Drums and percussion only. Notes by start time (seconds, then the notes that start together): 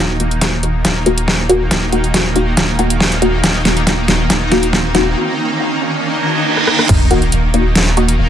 0.20 closed hi-hat
0.31 closed hi-hat
0.41 kick, snare, closed hi-hat
0.63 closed hi-hat
0.85 kick, snare, closed hi-hat
1.06 closed hi-hat
1.18 closed hi-hat
1.28 kick, snare
1.50 closed hi-hat
1.71 kick, snare, closed hi-hat
1.92 closed hi-hat
2.04 closed hi-hat
2.14 kick, snare, closed hi-hat
2.36 closed hi-hat
2.57 kick, snare, closed hi-hat
2.79 closed hi-hat
2.90 closed hi-hat
3.00 kick, snare
3.12 closed hi-hat
3.22 closed hi-hat
3.44 kick, snare, closed hi-hat
3.65 snare, closed hi-hat
3.77 closed hi-hat
3.87 kick, snare, closed hi-hat
4.08 snare, closed hi-hat
4.30 kick, snare, closed hi-hat
4.52 snare, closed hi-hat
4.63 closed hi-hat
4.73 kick, snare
4.95 snare, closed hi-hat
6.57 cross-stick
6.67 cross-stick
6.79 cross-stick
6.89 kick, closed hi-hat, crash
7.11 closed hi-hat
7.22 closed hi-hat
7.32 closed hi-hat
7.54 closed hi-hat
7.75 snare, closed hi-hat
7.97 closed hi-hat
8.08 closed hi-hat